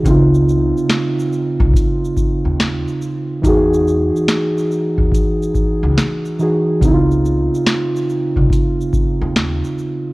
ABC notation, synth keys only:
X:1
M:4/4
L:1/8
Q:"Swing 16ths" 1/4=71
K:Db
V:1 name="Synth keys"
[D,CEF]8 | [=E,^D^F^G]6- [E,DFG] [E,DFG] | [D,CE_F=F]8 |]